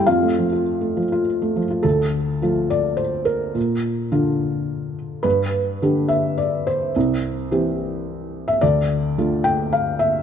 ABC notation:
X:1
M:3/4
L:1/16
Q:1/4=106
K:Dm
V:1 name="Felt piano"
[Ff]8 z4 | A6 d2 c2 B2- | B8- B2 z2 | =B6 e2 d2 c2- |
c8- c3 e | d6 g2 f2 e2 |]
V:2 name="Felt piano"
F,, A, F, F2 A, F, F2 A, F, F | D,,4 [F,A,F]8 | B,,4 [D,DF]8 | G,,4 [D,DG]8 |
C,,4 [E,CG]8 | D,,4 [D,A,F]8 |]